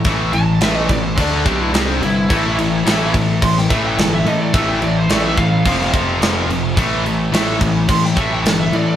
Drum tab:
CC |x-x-x-x-x-x-x-x-|x-x-x-x-x-x-x-x-|x-x-x-x-x-x-x-x-|x-x-x-x-x-x-x-x-|
SD |----o-------o---|----o----o--o---|----o----o--o---|----o----o--o---|
BD |o-----o-o-o-----|o-----o-o-o-----|o-----o-o-o-----|o-----o-o-o-----|